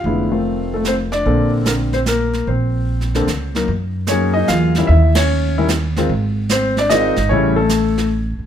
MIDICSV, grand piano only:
0, 0, Header, 1, 2, 480
1, 0, Start_track
1, 0, Tempo, 402955
1, 60, Time_signature, 3, 2, 24, 8
1, 10081, End_track
2, 0, Start_track
2, 0, Title_t, "Grand piano"
2, 0, Program_c, 0, 0
2, 0, Note_on_c, 0, 65, 53
2, 0, Note_on_c, 0, 77, 70
2, 68, Note_on_c, 0, 50, 44
2, 72, Note_on_c, 0, 56, 39
2, 75, Note_on_c, 0, 59, 37
2, 76, Note_on_c, 0, 64, 47
2, 353, Note_off_c, 0, 50, 0
2, 355, Note_off_c, 0, 56, 0
2, 357, Note_off_c, 0, 59, 0
2, 357, Note_off_c, 0, 64, 0
2, 361, Note_off_c, 0, 65, 0
2, 375, Note_on_c, 0, 51, 43
2, 377, Note_on_c, 0, 57, 39
2, 379, Note_on_c, 0, 60, 38
2, 379, Note_on_c, 0, 65, 50
2, 881, Note_on_c, 0, 69, 59
2, 890, Note_off_c, 0, 57, 0
2, 895, Note_off_c, 0, 77, 0
2, 908, Note_on_c, 0, 57, 49
2, 1035, Note_off_c, 0, 57, 0
2, 1036, Note_off_c, 0, 69, 0
2, 1039, Note_off_c, 0, 60, 0
2, 1040, Note_on_c, 0, 72, 70
2, 1057, Note_on_c, 0, 60, 55
2, 1110, Note_off_c, 0, 72, 0
2, 1126, Note_off_c, 0, 60, 0
2, 1334, Note_on_c, 0, 74, 80
2, 1363, Note_on_c, 0, 62, 57
2, 1404, Note_off_c, 0, 51, 0
2, 1406, Note_off_c, 0, 65, 0
2, 1498, Note_on_c, 0, 50, 52
2, 1504, Note_on_c, 0, 60, 46
2, 1505, Note_on_c, 0, 58, 52
2, 1507, Note_on_c, 0, 69, 58
2, 1786, Note_off_c, 0, 74, 0
2, 1801, Note_off_c, 0, 62, 0
2, 1944, Note_off_c, 0, 69, 0
2, 1961, Note_on_c, 0, 69, 50
2, 1965, Note_off_c, 0, 50, 0
2, 1969, Note_off_c, 0, 58, 0
2, 1969, Note_off_c, 0, 60, 0
2, 1988, Note_on_c, 0, 50, 40
2, 1988, Note_on_c, 0, 60, 34
2, 1990, Note_on_c, 0, 70, 64
2, 1993, Note_off_c, 0, 69, 0
2, 1997, Note_on_c, 0, 58, 32
2, 2061, Note_off_c, 0, 70, 0
2, 2275, Note_off_c, 0, 50, 0
2, 2275, Note_off_c, 0, 60, 0
2, 2280, Note_off_c, 0, 58, 0
2, 2305, Note_on_c, 0, 72, 66
2, 2335, Note_on_c, 0, 60, 53
2, 2364, Note_off_c, 0, 72, 0
2, 2395, Note_off_c, 0, 60, 0
2, 2476, Note_on_c, 0, 70, 64
2, 2494, Note_on_c, 0, 58, 50
2, 2928, Note_off_c, 0, 58, 0
2, 2951, Note_on_c, 0, 72, 53
2, 2965, Note_off_c, 0, 70, 0
2, 2976, Note_on_c, 0, 60, 45
2, 3740, Note_off_c, 0, 60, 0
2, 3757, Note_on_c, 0, 50, 53
2, 3758, Note_on_c, 0, 60, 46
2, 3760, Note_on_c, 0, 69, 58
2, 3762, Note_on_c, 0, 58, 47
2, 3895, Note_off_c, 0, 50, 0
2, 3896, Note_off_c, 0, 60, 0
2, 3897, Note_off_c, 0, 69, 0
2, 3898, Note_off_c, 0, 58, 0
2, 4183, Note_off_c, 0, 72, 0
2, 4233, Note_on_c, 0, 54, 45
2, 4242, Note_on_c, 0, 63, 45
2, 4243, Note_on_c, 0, 70, 55
2, 4245, Note_on_c, 0, 58, 44
2, 4373, Note_off_c, 0, 54, 0
2, 4378, Note_off_c, 0, 63, 0
2, 4379, Note_off_c, 0, 58, 0
2, 4379, Note_off_c, 0, 70, 0
2, 4864, Note_on_c, 0, 73, 72
2, 4887, Note_on_c, 0, 58, 46
2, 4890, Note_on_c, 0, 54, 56
2, 4890, Note_on_c, 0, 61, 53
2, 4892, Note_on_c, 0, 63, 46
2, 4900, Note_on_c, 0, 68, 58
2, 5163, Note_off_c, 0, 73, 0
2, 5165, Note_on_c, 0, 75, 79
2, 5178, Note_off_c, 0, 61, 0
2, 5184, Note_off_c, 0, 63, 0
2, 5201, Note_on_c, 0, 63, 66
2, 5324, Note_off_c, 0, 75, 0
2, 5338, Note_on_c, 0, 77, 91
2, 5343, Note_off_c, 0, 63, 0
2, 5386, Note_on_c, 0, 65, 72
2, 5613, Note_off_c, 0, 58, 0
2, 5615, Note_off_c, 0, 54, 0
2, 5620, Note_off_c, 0, 68, 0
2, 5688, Note_on_c, 0, 55, 47
2, 5689, Note_on_c, 0, 51, 51
2, 5696, Note_on_c, 0, 64, 61
2, 5699, Note_on_c, 0, 61, 51
2, 5788, Note_off_c, 0, 77, 0
2, 5804, Note_on_c, 0, 76, 80
2, 5814, Note_off_c, 0, 65, 0
2, 5821, Note_off_c, 0, 55, 0
2, 5822, Note_off_c, 0, 51, 0
2, 5825, Note_off_c, 0, 64, 0
2, 5827, Note_off_c, 0, 61, 0
2, 5855, Note_on_c, 0, 64, 62
2, 6140, Note_off_c, 0, 64, 0
2, 6141, Note_on_c, 0, 73, 73
2, 6146, Note_off_c, 0, 76, 0
2, 6183, Note_on_c, 0, 61, 58
2, 6637, Note_off_c, 0, 61, 0
2, 6645, Note_on_c, 0, 55, 52
2, 6647, Note_on_c, 0, 51, 62
2, 6648, Note_on_c, 0, 64, 71
2, 6655, Note_on_c, 0, 61, 59
2, 6738, Note_off_c, 0, 73, 0
2, 6779, Note_off_c, 0, 55, 0
2, 6780, Note_off_c, 0, 51, 0
2, 6780, Note_off_c, 0, 64, 0
2, 6784, Note_off_c, 0, 61, 0
2, 7118, Note_on_c, 0, 51, 62
2, 7118, Note_on_c, 0, 56, 57
2, 7121, Note_on_c, 0, 60, 56
2, 7126, Note_on_c, 0, 65, 68
2, 7255, Note_off_c, 0, 51, 0
2, 7255, Note_off_c, 0, 56, 0
2, 7257, Note_off_c, 0, 60, 0
2, 7259, Note_off_c, 0, 65, 0
2, 7764, Note_on_c, 0, 72, 82
2, 7783, Note_on_c, 0, 60, 62
2, 8054, Note_off_c, 0, 72, 0
2, 8064, Note_off_c, 0, 60, 0
2, 8083, Note_on_c, 0, 74, 86
2, 8111, Note_on_c, 0, 62, 63
2, 8214, Note_on_c, 0, 75, 95
2, 8225, Note_on_c, 0, 51, 59
2, 8230, Note_on_c, 0, 56, 53
2, 8238, Note_off_c, 0, 62, 0
2, 8238, Note_off_c, 0, 74, 0
2, 8238, Note_on_c, 0, 60, 57
2, 8240, Note_on_c, 0, 65, 63
2, 8266, Note_on_c, 0, 63, 71
2, 8513, Note_off_c, 0, 51, 0
2, 8516, Note_off_c, 0, 56, 0
2, 8520, Note_off_c, 0, 60, 0
2, 8521, Note_off_c, 0, 65, 0
2, 8688, Note_on_c, 0, 73, 80
2, 8693, Note_off_c, 0, 63, 0
2, 8714, Note_off_c, 0, 75, 0
2, 8715, Note_on_c, 0, 49, 60
2, 8719, Note_on_c, 0, 57, 58
2, 8721, Note_on_c, 0, 55, 55
2, 8722, Note_on_c, 0, 64, 63
2, 8745, Note_on_c, 0, 61, 63
2, 8998, Note_off_c, 0, 49, 0
2, 9000, Note_off_c, 0, 57, 0
2, 9001, Note_off_c, 0, 55, 0
2, 9002, Note_off_c, 0, 64, 0
2, 9009, Note_on_c, 0, 69, 83
2, 9024, Note_off_c, 0, 61, 0
2, 9026, Note_off_c, 0, 73, 0
2, 9067, Note_on_c, 0, 57, 55
2, 9610, Note_off_c, 0, 69, 0
2, 9641, Note_off_c, 0, 57, 0
2, 10081, End_track
0, 0, End_of_file